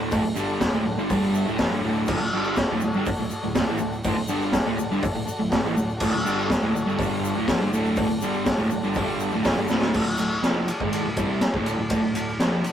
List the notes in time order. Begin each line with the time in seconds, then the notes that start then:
Already playing: D1 D2 A2 D3
0.11 D1 D2 A2 F#4 A4 D5, kick, open hi-hat, shaker
0.25 D1 D2 A2
0.35 G1 G2 D3 G3 F#4 A4 D5, shaker
0.59 F#4 A4 D5, muted overdriven electric guitar stroke, muted picked electric bass stroke, kick, snare, open hi-hat, shaker
0.73 D1 D2 A2
0.85 D1 D2 A2 F#4 A4 D5
0.98 G1 G2 D3, shaker
1.10 G1 G2 D3 G3 F#4 A4 D5, kick, open hi-hat, shaker
1.33 F#4 A4 E5, shaker
1.46 D1 D2 A2, shaker
1.55 F1 F#4 A4 B4, kick, snare, open hi-hat, shaker
1.60 F2 C3
1.71 G1 G2 D3
1.83 D1 D2 A2 D3 F#4 A4 D5
1.95 shaker
2.06 D1 D2 A2, kick, crash, shaker
2.11 F#4 A4 D5
2.20 D1 D2 A2
2.32 G1 G2 D3 G3 F#4 A4 D5
2.44 shaker
2.56 F#4, muted picked electric bass stroke, muted overdriven electric guitar stroke, kick, snare, open hi-hat, shaker
2.62 A4 D5
2.70 D1 D2 A2
2.81 D1 D2 A2 F#4, shaker
2.85 A4 D5
2.93 G1 G2 D3, shaker
3.05 F#4 A4, muted picked electric bass stroke, muted overdriven electric guitar stroke, kick, open hi-hat, shaker
3.12 D5
3.19 D1 D2 A2
3.31 F#4 A4 D5, muted overdriven electric guitar stroke, muted picked electric bass stroke, shaker
3.43 D1 D2 A2
3.55 D1 D2 A2 F#4 A4, kick, snare, open hi-hat, shaker
3.59 D5
3.68 A1 A2 E3
3.78 D1 D2 A2 F#4 A4 D5, shaker
3.93 shaker
4.03 D1 D2 A2 F#4 A4, kick, open hi-hat, shaker
4.08 C5
4.17 D1 D2 A2
4.28 G1 G2 D3 G3 F#4 A4 D5, shaker
4.41 shaker
4.52 F#4 A4 D5, muted overdriven electric guitar stroke, muted picked electric bass stroke, kick, snare, open hi-hat, shaker
4.66 D1 D2 A2
4.77 D1 D2 A2 F#4 A4 D5, shaker
4.91 G1 G2 D3, shaker
5.01 F#4 A4 D5, muted picked electric bass stroke, muted overdriven electric guitar stroke, kick, open hi-hat, shaker
5.16 D1 D2 A2
5.24 F#4 A4 D5, muted picked electric bass stroke, muted overdriven electric guitar stroke, shaker
5.40 D1 D2 A2
5.49 D1 D2 F#4 A4 D5, kick, snare, open hi-hat, shaker
5.53 A2
5.65 A1 A2 E3
5.73 D2 F#4 A4 D5
5.77 D1 A2, shaker
5.89 shaker
5.96 F#4 A4 D5, crash
6.01 D1 D2 A2, kick, shaker
6.13 D1 D2 A2
6.21 G2 F#4 A4 D5
6.25 G1 D3 G3, shaker
6.39 shaker
6.45 F#4 A4 D5
6.50 muted picked electric bass stroke, muted overdriven electric guitar stroke, kick, snare, open hi-hat, shaker
6.62 D1 D2 A2
6.70 F#4 A4 D5
6.76 D1 D2 A2, shaker
6.86 G1 G2 D3, shaker
6.95 G1 G2 F#4 A4 D5, kick
6.99 D3 G3, open hi-hat, shaker
7.22 F#4 A4 D5, shaker
7.36 D1 D2 A2
7.46 F1 F2 C3 F#4 A4 D5, kick, snare, open hi-hat, shaker
7.60 G1 G2 D3
7.71 D1 D2 A2 D3 F#4 A4 D5, shaker
7.86 shaker
7.95 D1 D2 F#4 A4 D5, kick, open hi-hat, shaker
7.99 A2
8.10 D1 D2 A2
8.18 F#4 A4 D5, shaker
8.22 G1 G2 D3 G3
8.35 shaker
8.44 F#4 A4 D5, muted overdriven electric guitar stroke, muted picked electric bass stroke, kick, snare, open hi-hat, shaker
8.58 D1 D2 A2
8.70 D1 D2 A2 F#4 A4 D5, shaker
8.84 G1 G2 D3, shaker
8.90 F#4 A4 D5, shaker
8.96 G1 G2 D3 G3, kick, open hi-hat
9.20 F#4 A4 D5, shaker
9.31 D1 D2 A2, shaker
9.42 F1 F#4 A4 D5, kick, snare, open hi-hat, shaker
9.46 F2 C3
9.57 G1 G2 D3
9.65 F#4 A4 D5, shaker
9.69 D1 D2 A2 D3, snare
9.82 snare, shaker
9.92 D1 D2 A2 F#4 A4 D5, kick, crash, shaker
10.06 D1 D2 A2
10.16 D1 D2 A2 F#4 A4 D5, ride, shaker
10.31 shaker
10.42 F1 F2 C3 F3 F#4 A4, snare, ride, shaker
10.47 D5
10.66 F#4 A4 D5, muted overdriven electric guitar stroke, muted picked electric bass stroke, ride, shaker
10.80 G#1 G#2 D#3 G#3, kick
10.92 F#4 A4 D5, ride, shaker
11.03 D1 D2 A2
11.14 C2 C3 F#4 A4 D5, kick, ride, shaker
11.18 G3 C4
11.40 F#4 A4 D5, muted picked electric bass stroke, muted overdriven electric guitar stroke, snare, ride, shaker
11.54 D1 D2 A2 D3, kick
11.63 F#4 A4 D5, ride
11.68 shaker
11.78 D1 D2 A2
11.88 D1 D2 A2 F#4 A4 D5, kick, ride
11.93 shaker
12.02 D1 D2 A2
12.14 D1 D2 A2 F#4 A4 D5, ride, shaker
12.29 shaker
12.39 F1 F2 C3 F3 F#4 A4 D5, snare, ride, shaker
12.64 F#4, muted overdriven electric guitar stroke, muted picked electric bass stroke, ride, shaker
12.68 A4